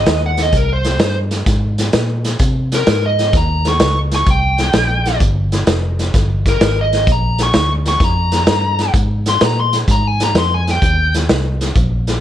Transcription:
Already playing: D#5
0.06 D#2, snare, closed hi-hat
0.26 F#5
0.37 snare, closed hi-hat
0.42 D#5
0.53 C2, kick, closed hi-hat
0.57 A#4
0.73 C5
0.84 snare, closed hi-hat
0.99 G2, snare, closed hi-hat
1.31 snare, closed hi-hat
1.46 G#2, kick, snare, closed hi-hat
1.78 snare, closed hi-hat
1.93 A#2, snare, closed hi-hat
2.25 snare, closed hi-hat
2.39 C3, kick, closed hi-hat
2.72 A#4, snare, closed hi-hat
2.87 G#2, snare, closed hi-hat
3.06 D#5
3.19 snare, closed hi-hat
3.33 D#2 A#5, kick, snare, closed hi-hat
3.65 snare, closed hi-hat
3.69 C#6
3.80 C#2, snare, closed hi-hat
4.12 C#6, snare, closed hi-hat
4.26 C2, kick, closed hi-hat
4.30 G5
4.58 snare, closed hi-hat
4.73 A#1, snare, closed hi-hat
5.06 snare, closed hi-hat
5.20 G1, kick, closed hi-hat
5.52 snare, closed hi-hat
5.67 F1, snare, closed hi-hat
5.99 snare, closed hi-hat
6.14 G1, kick, snare, closed hi-hat
6.46 A#4, kick, snare, closed hi-hat
6.61 G#1, snare, closed hi-hat
6.81 D#5
6.93 snare, closed hi-hat
7.07 A#1, kick, closed hi-hat
7.12 A#5
7.38 snare, closed hi-hat
7.43 C#6
7.54 D2, snare, closed hi-hat
7.86 C#6, snare, closed hi-hat
8.00 F2 A#5, kick, snare, closed hi-hat
8.32 snare, closed hi-hat
8.47 G2, snare, closed hi-hat
8.79 snare, closed hi-hat
8.94 G#2, kick, closed hi-hat
9.26 C6, snare, closed hi-hat
9.41 A#2, snare, closed hi-hat
9.45 A#5
9.60 C6
9.73 snare, closed hi-hat
9.88 G#2 A#5, kick, closed hi-hat
10.07 G#5
10.20 A#5, snare, closed hi-hat
10.35 F2, snare, closed hi-hat
10.39 C6
10.54 G#5
10.68 G5, snare, closed hi-hat
10.82 D#2, kick, closed hi-hat
11.14 snare, closed hi-hat
11.29 C2, snare, closed hi-hat
11.61 snare, closed hi-hat
11.75 A#1, kick, closed hi-hat
12.07 snare, closed hi-hat

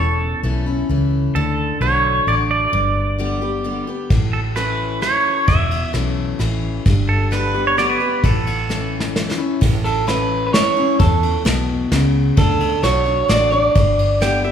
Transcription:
Already playing: E1 A4
0.00 E2
0.43 B1 E3 A3 C#4 E4
0.66 C#4 E4
0.89 C#2 E3 A3 C#4 E4
1.35 D2 D3 A4
1.81 B1 D3 A3 D4 F#4 C#5
2.27 A1 D3 A3 D4 F#4 D5
2.51 D5
2.72 G1 G2
3.19 D3 G3 B3 G4
3.41 B3 G4
3.64 D3 G3 B3 G4
3.87 B3 G4
4.10 A1 A2, kick, ride
4.33 A4
4.56 E3 A3 C#4 E4 B4, cross-stick, ride
5.02 E3 A3 C#4 E4 C#5, cross-stick, ride
5.48 E1 E2 E5, kick, ride
5.71 ride
5.93 B1 E3 A3 C#4 E4, cross-stick, ride
6.39 A1 E3 A3 C#4 E4, cross-stick, ride
6.86 G1 G2, kick, ride
7.09 A4
7.31 D3 G3 B3 G4 B4, cross-stick, ride
7.54 B3 G4
7.67 C#5
7.77 D3 G3 B3 G4 D5, cross-stick, ride
7.89 B4
8.00 B3 G4
8.24 A1 A2 A4, kick, ride
8.47 ride
8.69 E3 A3 C#4 E4, snare
9.00 snare
9.16 E3 A3 C#4 E4, snare
9.31 snare
9.38 C#4 E4
9.61 A1 A2, kick, crash
9.84 A4, ride
10.07 E3 A3 C#4 E4 B4, snare, ride
10.47 B4
10.53 E3 A3 C#4 E4 C#5, snare, ride
10.77 C#4 E4
10.99 E2 A4, kick, ride
11.23 ride
11.45 B1 B2, snare, ride
11.91 C#2 C#3, snare, ride
12.37 D2 D3 A4, kick, ride
12.60 ride
12.83 B1 D3 A3 D4 F#4 C#5, snare, ride
13.06 D4 F#4
13.29 A1 D3 A3 D4 F#4 D5, snare, ride
13.51 D4 F#4 D5
13.75 G1 G2, kick, ride
13.99 ride
14.21 D3 G3 B3 G4 G5, snare, ride
14.44 B3 G4 E5

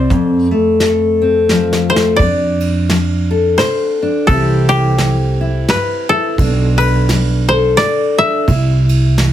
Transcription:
Already playing: C4 C5 D5
0.10 F2, kick, closed hi-hat
0.51 A3
0.80 A4, snare, closed hi-hat
1.22 C4
1.49 F3, snare
1.73 snare
1.90 A3 C5
1.96 snare
2.16 F2 D4 D5, kick, ride
2.60 ride
2.89 F3, snare, ride
3.31 A4
3.58 C3 C5, snare, ride
4.02 D4
4.27 C2 C3 E3 C4 A4, kick, ride
4.31 E4 G4
4.69 G4, ride
4.98 E3, snare, ride
5.41 E4
5.68 G2 B4, snare, ride
6.09 E4 A4
6.38 B1 B2 D4, kick, ride
6.78 B4, ride
7.09 G3, snare, ride
7.49 A4 C5
7.77 B2 D5, snare, ride
8.18 D4 E5
8.48 C2 C3 E4, kick, ride
8.89 ride
9.18 E3, snare, ride

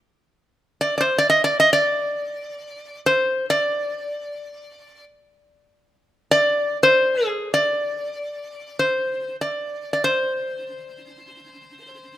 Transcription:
0.81 D5
0.98 C5 D5
1.18 D5
1.30 D#5
1.44 D5
1.60 D#5
1.73 D5
3.06 C5
3.50 D5
6.31 D5
6.83 C5
7.28 G#4
7.54 D5
8.79 C5
9.41 D5
9.93 D5
10.04 C5

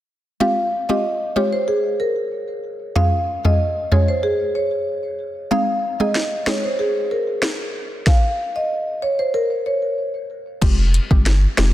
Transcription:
0.40 G#3 C4 F4 G4 F5
0.89 G#3 C4 F4 G4 D#5
1.36 G#3 C4 F4 G4 C#5
1.53 C5
1.68 G#4
2.00 A#4
2.96 F2 G#3 C#4 F4 G#4 F5
3.45 F2 G#3 C#4 F4 G#4 D#5
3.92 F2 G#3 C#4 F4 G#4 C#5
4.08 C5
4.23 G#4
4.55 C#5
5.51 G#3 C4 D#4 G#4 F5
6.00 G#3 C4 D#4 G#4 D#5
6.15 snare
6.46 G#3 C4 D#4 G#4 C#5, cross-stick, snare
6.64 C5
6.79 G#4
7.11 A#4
7.42 cross-stick, snare
8.07 F5, kick, snare
8.56 D#5
9.02 C#5
9.19 C5
9.34 A#4
9.66 C#5
10.62 F1 G#3 C4 F4 G4, kick, closed hi-hat, crash
10.94 closed hi-hat
11.11 G1 G#3 C4 F4 G4, kick
11.26 snare, closed hi-hat
11.57 F1 G#3 C4 F4 G4, cross-stick, snare, closed hi-hat

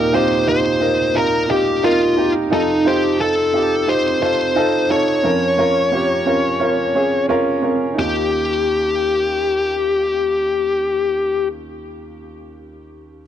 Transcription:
Already playing: D#2 A#2 D#4 F4 G4 A#4
0.13 D#4 F4 G4 C5
0.47 D#4 F4 G4 C5
0.80 D#4 F4 A#4
1.14 D#4 F4 A#4
1.49 D#4 F4 G4
1.83 D#4 F4 A#4
2.16 D#4 F4 G4
2.51 F2 C3 D#4 F4 A4
2.85 D#4 F4 G4 C5
3.20 D#4 F4 A4
3.53 D#4 F4 G4
3.87 D#4 F4 G4 C5
4.21 D#4 F4 A4 C5
4.55 D#4 F4 A4
4.89 D#4 F4 A4 C#5
5.23 F2 F3 C#4 F4 A#4
5.58 C#4 F4 A#4
5.92 C#4 F4 G4
6.26 C#4 F4 A#4
6.60 C#4 F4 A#4
6.95 C#4 F4 G#4
7.29 C#4 F4 A#4
7.62 C#4 F4 A#4
7.94 D#2 D#4 F4
7.99 G4

